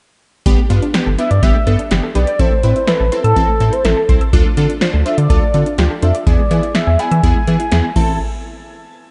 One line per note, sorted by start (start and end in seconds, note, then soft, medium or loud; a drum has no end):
0.46 0.56 G1 loud
0.46 0.55 G3 loud
0.46 0.60 B3 loud
0.46 0.60 D4 loud
0.46 0.60 G4 loud
0.46 kick loud
0.46 closed hi-hat medium
0.58 0.67 A3 medium
0.70 0.80 G2 loud
0.70 0.84 B3 medium
0.70 0.79 B3 medium
0.70 0.84 D4 medium
0.70 0.84 F4 loud
0.70 closed hi-hat medium
0.82 0.91 D4 medium
0.82 closed hi-hat soft
0.94 1.08 B3 medium
0.94 1.08 D4 medium
0.94 1.08 G4 loud
0.94 1.04 G4 medium
0.94 snare loud
0.94 closed hi-hat medium
1.06 1.16 G1 loud
1.06 1.16 A4 medium
1.18 1.32 B3 medium
1.18 1.32 D4 medium
1.18 1.32 E4 medium
1.18 1.28 B4 medium
1.18 1.30 E5 loud
1.18 closed hi-hat medium
1.31 1.40 G2 loud
1.31 1.40 D5 medium
1.31 1.44 D5 medium
1.31 closed hi-hat medium
1.43 1.52 G1 loud
1.43 1.52 G3 medium
1.43 1.56 B3 medium
1.43 1.56 D4 medium
1.43 1.56 G4 loud
1.43 1.91 E5 medium
1.43 kick medium
1.43 closed hi-hat medium
1.55 1.64 A3 medium
1.67 1.77 G2 medium
1.67 1.80 B3 medium
1.67 1.76 B3 medium
1.67 1.80 D4 medium
1.67 1.81 A4 medium
1.67 closed hi-hat medium
1.79 1.88 D4 medium
1.79 closed hi-hat medium
1.91 2.01 G1 medium
1.91 2.05 B3 medium
1.91 2.05 D4 medium
1.91 2.05 G4 medium
1.91 2.00 G4 medium
1.91 snare loud
1.91 closed hi-hat medium
2.03 2.12 A4 medium
2.15 2.25 B1 medium
2.15 2.29 B3 medium
2.15 2.29 D4 medium
2.15 2.29 G4 medium
2.15 2.25 B4 medium
2.15 2.41 D5 loud
2.15 closed hi-hat medium
2.27 2.37 D5 medium
2.27 closed hi-hat medium
2.39 2.49 A1 loud
2.39 2.49 E3 medium
2.39 2.53 C4 medium
2.39 2.53 E4 medium
2.39 2.53 A4 loud
2.39 2.89 C5 loud
2.39 kick loud
2.39 closed hi-hat medium
2.52 2.61 A3 medium
2.63 2.73 A2 loud
2.63 2.77 C4 medium
2.63 2.73 C4 medium
2.63 2.77 E4 medium
2.63 2.77 B4 medium
2.63 closed hi-hat medium
2.76 2.85 E4 medium
2.76 closed hi-hat soft
2.87 3.02 C4 medium
2.87 3.02 E4 medium
2.87 3.02 A4 medium
2.87 3.23 B4 medium
2.87 2.97 E5 medium
2.87 snare loud
2.87 closed hi-hat medium
3.00 3.10 A1 loud
3.00 3.09 A5 medium
3.12 3.26 C4 medium
3.12 3.26 E4 medium
3.12 3.26 A4 medium
3.12 3.21 C6 medium
3.12 closed hi-hat medium
3.24 3.34 A2 medium
3.24 3.74 A4 medium
3.24 3.33 E6 medium
3.24 closed hi-hat medium
3.36 3.46 A1 loud
3.36 3.45 E3 medium
3.36 3.50 C4 loud
3.36 3.50 E4 medium
3.36 3.50 A4 loud
3.36 kick medium
3.36 closed hi-hat medium
3.48 3.58 A3 medium
3.60 3.70 A2 medium
3.60 3.70 C4 medium
3.60 3.74 C4 medium
3.60 3.74 E4 medium
3.60 3.74 A4 medium
3.60 closed hi-hat medium
3.73 3.82 E4 medium
3.73 3.86 C5 medium
3.73 closed hi-hat medium
3.84 3.94 A1 medium
3.84 3.98 C4 medium
3.84 3.98 E4 medium
3.84 4.21 A4 medium
3.84 3.98 A4 medium
3.84 3.94 E5 medium
3.84 snare loud
3.84 closed hi-hat medium
3.97 4.06 A5 medium
4.09 4.19 C2 medium
4.09 4.23 C4 medium
4.09 4.23 E4 medium
4.09 4.23 C5 medium
4.09 4.18 C6 medium
4.09 kick medium
4.09 closed hi-hat medium
4.21 4.30 E6 medium
4.21 closed hi-hat medium
4.33 4.43 D2 loud
4.33 4.42 F3 loud
4.33 4.47 D4 loud
4.33 4.47 F4 loud
4.33 4.47 A4 loud
4.33 kick loud
4.33 closed hi-hat medium
4.45 4.54 A3 medium
4.57 4.67 D3 loud
4.57 4.66 C4 medium
4.57 4.71 D4 medium
4.57 4.71 F4 medium
4.57 4.71 A4 loud
4.57 closed hi-hat medium
4.69 4.78 D4 medium
4.69 closed hi-hat soft
4.81 4.95 D4 medium
4.81 4.91 F4 medium
4.81 4.95 F4 medium
4.81 4.95 C5 loud
4.81 snare loud
4.81 closed hi-hat medium
4.93 5.03 D2 medium
4.93 5.03 A4 medium
5.05 5.19 D4 medium
5.05 5.19 F4 medium
5.05 5.19 A4 medium
5.05 5.15 C5 medium
5.05 5.17 E5 loud
5.05 closed hi-hat medium
5.18 5.27 D3 medium
5.18 5.74 D5 loud
5.18 5.27 D5 medium
5.18 closed hi-hat medium
5.30 5.40 D2 medium
5.30 5.39 F3 medium
5.30 5.44 D4 medium
5.30 5.44 F4 medium
5.30 5.44 A4 loud
5.30 kick medium
5.30 closed hi-hat medium
5.42 5.51 A3 medium
5.54 5.64 D3 medium
5.54 5.63 C4 medium
5.54 5.68 D4 medium
5.54 5.68 F4 medium
5.54 5.68 A4 medium
5.54 closed hi-hat medium
5.66 5.75 D4 medium
5.66 closed hi-hat medium
5.78 5.88 D2 medium
5.78 5.92 D4 medium
5.78 5.87 F4 medium
5.78 5.92 F4 medium
5.78 5.92 G4 loud
5.78 snare loud
5.78 closed hi-hat medium
5.90 5.99 A4 medium
6.02 6.12 F2 medium
6.02 6.16 D4 medium
6.02 6.16 F4 medium
6.02 6.16 A4 medium
6.02 6.12 C5 medium
6.02 6.13 E5 medium
6.02 closed hi-hat medium
6.15 6.24 D5 medium
6.15 closed hi-hat medium
6.26 6.36 E2 loud
6.26 6.36 E3 medium
6.26 6.40 B3 loud
6.26 6.40 E4 medium
6.26 6.40 G#4 loud
6.26 6.72 D5 medium
6.26 kick loud
6.26 closed hi-hat medium
6.39 6.48 G#3 medium
6.51 6.61 E3 loud
6.51 6.64 B3 medium
6.51 6.60 B3 medium
6.51 6.64 E4 medium
6.51 6.64 G#4 medium
6.51 closed hi-hat medium
6.63 6.72 E4 medium
6.63 closed hi-hat soft
6.75 6.89 B3 medium
6.75 6.89 E4 medium
6.75 6.89 G#4 medium
6.75 6.84 E5 medium
6.75 7.01 E5 medium
6.75 snare loud
6.75 closed hi-hat medium
6.87 6.97 E2 loud
6.87 6.96 G#5 medium
6.99 7.13 B3 medium
6.99 7.13 E4 medium
6.99 7.13 G#4 medium
6.99 7.95 G#5 loud
6.99 7.08 B5 medium
6.99 closed hi-hat medium
7.11 7.21 E3 loud
7.11 7.21 E6 medium
7.11 closed hi-hat medium
7.23 7.33 E2 loud
7.23 7.33 E3 medium
7.23 7.37 B3 loud
7.23 7.37 E4 medium
7.23 7.37 G#4 loud
7.23 kick medium
7.23 closed hi-hat medium
7.36 7.45 G#3 medium
7.47 7.57 E3 loud
7.47 7.61 B3 medium
7.47 7.57 B3 medium
7.47 7.61 E4 medium
7.47 7.61 G#4 medium
7.47 closed hi-hat medium
7.60 7.69 E4 medium
7.60 closed hi-hat medium
7.72 7.82 E2 loud
7.72 7.85 B3 medium
7.72 7.85 E4 medium
7.72 7.85 G#4 loud
7.72 7.81 E5 medium
7.72 snare loud
7.72 closed hi-hat medium
7.84 7.93 G#5 medium
7.96 8.18 A1 loud
7.96 8.18 E3 medium
7.96 8.19 A3 medium
7.96 8.18 C4 medium
7.96 8.19 C4 medium
7.96 8.18 E4 medium
7.96 8.19 E4 medium
7.96 8.18 A4 medium
7.96 8.18 A5 medium
7.96 kick loud
7.96 crash medium